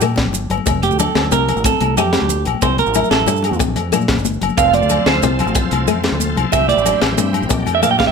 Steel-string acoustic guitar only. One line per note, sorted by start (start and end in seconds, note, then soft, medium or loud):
0.02 0.30 A#3 medium
0.67 0.95 C4 medium
1.00 1.28 D4 medium
1.32 1.60 C4 medium
1.65 1.93 C4 medium
1.98 2.26 A3 medium
2.63 2.91 C4 medium
2.96 3.23 E4 medium
3.28 3.56 G3 medium
3.60 3.88 C4 medium
3.92 4.21 A#3 medium
4.58 4.86 C4 medium
4.90 5.18 D4 medium
5.23 5.51 C4 medium
5.56 5.84 C4 medium
5.88 6.16 A3 medium
6.53 6.81 C4 medium
6.86 7.14 D4 medium
7.18 7.46 C4 medium
7.50 7.79 C4 medium
7.83 8.11 A#3 medium